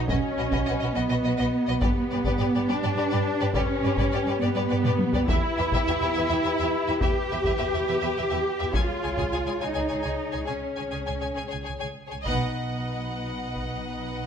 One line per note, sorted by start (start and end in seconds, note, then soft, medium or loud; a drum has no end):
0.00 1.78 F#4 medium
0.00 1.79 D#5 soft
0.08 0.15 B1 medium
0.08 0.93 C#4 medium
0.08 0.16 F#4 soft
0.08 0.15 B4 medium
0.08 0.15 D#5 medium
0.08 taiko medium
0.38 0.43 B1 soft
0.38 0.44 F#4 soft
0.38 0.43 B4 soft
0.38 0.44 D#5 soft
0.52 0.58 B1 medium
0.52 0.58 F#4 medium
0.52 0.57 B4 medium
0.52 0.58 D#5 medium
0.52 taiko medium
0.66 0.73 B1 soft
0.66 0.74 F#4 soft
0.66 0.74 B4 soft
0.66 0.72 D#5 soft
0.79 0.87 B1 soft
0.79 0.88 F#4 soft
0.79 0.88 B4 soft
0.79 0.85 D#5 soft
0.95 1.01 B1 medium
0.95 1.81 B3 medium
0.95 1.01 F#4 medium
0.95 1.01 B4 medium
0.95 1.01 D#5 medium
1.09 1.15 B1 soft
1.09 1.16 F#4 soft
1.09 1.17 B4 soft
1.09 1.15 D#5 soft
1.24 1.30 B1 soft
1.24 1.32 F#4 soft
1.24 1.32 B4 soft
1.24 1.30 D#5 soft
1.38 1.45 B1 medium
1.38 1.45 F#4 medium
1.38 1.45 B4 medium
1.38 1.44 D#5 medium
1.67 1.73 B1 soft
1.67 1.74 F#4 soft
1.67 1.74 B4 soft
1.67 1.73 D#5 medium
1.80 1.87 G2 medium
1.80 2.66 B3 medium
1.80 2.67 B3 medium
1.80 5.24 G4 medium
1.80 1.88 G4 medium
1.80 5.24 B4 medium
1.80 1.89 B4 medium
1.80 1.87 D5 medium
1.80 taiko medium
2.11 2.16 G2 soft
2.11 2.18 G4 soft
2.11 2.18 B4 soft
2.11 2.17 D5 soft
2.24 2.31 G2 medium
2.24 2.31 G4 medium
2.24 2.31 B4 medium
2.24 2.31 D5 medium
2.24 taiko medium
2.38 2.44 G2 soft
2.38 2.46 G4 soft
2.38 2.46 B4 soft
2.38 2.45 D5 soft
2.53 2.59 G2 soft
2.53 2.60 G4 soft
2.53 2.61 B4 soft
2.53 2.60 D5 soft
2.67 2.73 G2 medium
2.67 3.54 D4 medium
2.67 2.75 G4 medium
2.67 2.75 B4 medium
2.67 2.74 D5 medium
2.82 2.88 G2 soft
2.82 2.89 G4 medium
2.82 2.89 B4 medium
2.82 2.89 D5 soft
2.96 3.02 G2 medium
2.96 3.03 G4 medium
2.96 3.03 B4 soft
2.96 3.04 D5 soft
3.10 3.17 G2 medium
3.10 3.18 G4 medium
3.10 3.17 B4 medium
3.10 3.16 D5 medium
3.39 3.45 G2 medium
3.39 3.46 G4 medium
3.39 3.47 B4 medium
3.39 3.46 D5 medium
3.54 3.59 G2 medium
3.54 4.39 C#4 medium
3.54 3.61 G4 medium
3.54 3.61 B4 medium
3.54 3.60 D5 medium
3.54 taiko medium
3.83 3.88 G2 medium
3.83 3.91 B4 soft
3.83 3.89 D5 soft
3.87 3.92 G4 medium
3.97 4.03 G2 medium
3.97 4.05 G4 medium
3.97 4.04 B4 medium
3.97 4.03 D5 medium
3.97 taiko medium
4.10 4.16 G2 soft
4.10 4.18 D5 soft
4.14 4.20 G4 medium
4.14 4.19 B4 soft
4.25 4.31 G2 soft
4.25 4.34 B4 soft
4.25 4.32 D5 soft
4.30 4.35 G4 medium
4.39 4.45 G2 medium
4.39 5.29 B3 medium
4.39 5.27 B3 medium
4.39 4.48 G4 medium
4.39 4.48 B4 medium
4.39 4.47 D5 medium
4.55 4.61 G2 soft
4.55 4.62 G4 soft
4.55 4.62 B4 medium
4.55 4.61 D5 soft
4.69 4.76 G2 medium
4.69 4.77 G4 medium
4.69 4.77 B4 medium
4.69 4.75 D5 soft
4.84 4.90 G2 medium
4.84 4.91 G4 medium
4.84 4.91 B4 medium
4.84 4.90 D5 medium
4.84 taiko mid medium
4.99 taiko high medium
5.13 5.19 G2 soft
5.13 5.20 G4 soft
5.13 5.21 B4 soft
5.13 5.20 D5 medium
5.13 taiko low medium
5.28 5.35 E2 medium
5.28 6.98 E4 medium
5.28 6.99 E4 medium
5.28 8.58 G4 medium
5.28 5.35 G4 medium
5.28 8.58 B4 medium
5.28 5.35 B4 medium
5.28 5.35 E5 medium
5.28 taiko medium
5.58 5.63 E2 medium
5.58 5.64 G4 soft
5.58 5.64 B4 soft
5.58 5.64 E5 soft
5.72 5.78 E2 medium
5.72 5.80 G4 medium
5.72 5.80 B4 medium
5.72 5.78 E5 medium
5.72 taiko medium
5.87 5.92 E2 soft
5.87 5.94 G4 soft
5.87 5.94 B4 soft
5.87 5.92 E5 soft
6.01 6.06 E2 soft
6.01 6.08 G4 soft
6.01 6.08 B4 soft
6.01 6.07 E5 soft
6.15 6.21 E2 medium
6.15 6.22 G4 medium
6.15 6.22 B4 medium
6.15 6.20 E5 medium
6.29 6.35 E2 soft
6.29 6.37 G4 medium
6.29 6.37 B4 medium
6.29 6.34 E5 soft
6.43 6.50 E2 soft
6.43 6.51 G4 soft
6.43 6.52 B4 soft
6.43 6.49 E5 soft
6.58 6.65 E2 medium
6.58 6.67 B4 medium
6.58 6.64 E5 medium
6.62 6.67 G4 medium
6.87 6.93 E2 soft
6.87 6.95 G4 soft
6.87 6.95 B4 soft
6.87 6.93 E5 soft
7.01 7.07 E2 medium
7.01 8.71 G4 medium
7.01 7.09 G4 medium
7.01 7.08 B4 medium
7.01 7.08 E5 medium
7.01 taiko medium
7.31 7.36 E2 soft
7.31 7.38 G4 soft
7.31 7.37 B4 soft
7.31 7.37 E5 soft
7.44 7.51 E2 medium
7.44 7.51 G4 medium
7.44 7.52 B4 medium
7.44 7.51 E5 medium
7.44 taiko medium
7.59 7.65 E2 soft
7.59 7.65 G4 soft
7.59 7.65 B4 soft
7.59 7.64 E5 soft
7.74 7.80 E2 soft
7.74 7.80 G4 soft
7.74 7.80 B4 soft
7.74 7.79 E5 soft
7.88 7.94 E2 medium
7.88 7.94 G4 soft
7.88 7.94 B4 medium
7.88 7.93 E5 medium
8.01 8.08 E2 soft
8.01 8.08 G4 soft
8.01 8.08 B4 soft
8.01 8.07 E5 soft
8.17 8.23 E2 soft
8.17 8.23 G4 soft
8.17 8.23 B4 soft
8.17 8.23 E5 soft
8.30 8.37 E2 medium
8.30 8.37 G4 medium
8.30 8.37 B4 medium
8.30 8.36 E5 soft
8.59 8.66 E2 soft
8.59 8.66 G4 soft
8.59 8.65 B4 soft
8.59 8.65 E5 soft
8.72 8.81 C#2 medium
8.72 9.62 F4 medium
8.72 8.79 G#4 soft
8.72 11.93 G#4 soft
8.72 8.78 C#5 soft
8.72 11.93 C#5 soft
8.72 8.81 G#5 soft
8.72 taiko medium
8.76 9.60 F4 medium
9.02 9.10 C#2 soft
9.02 9.08 G#4 soft
9.02 9.09 C#5 soft
9.02 9.09 G#5 soft
9.17 9.24 C#2 soft
9.17 9.23 G#4 soft
9.17 9.23 C#5 soft
9.17 9.24 G#5 soft
9.17 taiko medium
9.32 9.38 C#2 soft
9.32 9.39 G#4 soft
9.32 9.38 C#5 soft
9.32 9.38 G#5 soft
9.47 9.53 C#2 soft
9.47 9.52 G#4 soft
9.47 9.52 C#5 soft
9.47 9.52 G#5 soft
9.60 9.67 C#2 soft
9.60 10.49 D#4 medium
9.60 10.48 D#4 soft
9.60 9.67 G#4 soft
9.60 9.66 C#5 soft
9.60 9.67 G#5 soft
9.75 9.82 C#2 soft
9.75 9.81 G#4 soft
9.75 9.81 C#5 soft
9.75 9.81 G#5 soft
9.88 9.97 C#2 soft
9.88 9.96 G#4 soft
9.88 9.96 C#5 soft
9.88 9.94 G#5 soft
10.03 10.11 C#2 soft
10.03 10.10 G#4 soft
10.03 10.11 C#5 soft
10.03 10.09 G#5 soft
10.32 10.41 C#2 soft
10.32 10.38 G#4 soft
10.32 10.39 C#5 soft
10.32 10.38 G#5 soft
10.45 11.36 C#4 soft
10.45 10.52 G#4 soft
10.45 10.53 C#5 soft
10.45 10.53 G#5 soft
10.50 10.55 C#2 soft
10.50 11.36 C#4 soft
10.76 10.85 C#2 soft
10.76 10.84 G#4 soft
10.76 10.83 C#5 soft
10.76 10.83 G#5 soft
10.91 10.99 C#2 soft
10.91 10.97 G#4 soft
10.91 10.98 C#5 soft
10.91 10.97 G#5 soft
11.06 11.14 C#2 soft
11.06 11.12 G#4 soft
11.06 11.13 C#5 soft
11.06 11.13 G#5 soft
11.20 11.29 C#2 soft
11.20 11.26 G#4 soft
11.20 11.26 C#5 soft
11.20 11.28 G#5 soft
11.34 11.44 C#2 soft
11.34 11.41 G#4 soft
11.34 11.41 C#5 soft
11.34 11.42 G#5 soft
11.48 11.55 G#4 soft
11.48 11.55 C#5 soft
11.48 11.57 G#5 soft
11.52 11.58 C#2 soft
11.63 11.70 G#4 soft
11.63 11.70 C#5 soft
11.63 11.72 G#5 soft
11.68 11.73 C#2 soft
11.79 11.88 C#2 soft
11.79 11.86 G#4 soft
11.79 11.85 C#5 soft
11.79 11.86 G#5 soft
12.07 12.14 G#4 soft
12.07 12.14 C#5 soft
12.07 12.17 G#5 soft
12.12 12.18 C#2 soft
12.21 14.27 D#5 soft
12.21 14.27 F#5 soft
12.21 taiko soft
12.26 14.27 B1 soft
12.26 14.27 B2 soft
12.26 14.27 B3 medium
12.26 14.27 D#4 medium
12.26 14.27 B4 soft
13.56 taiko soft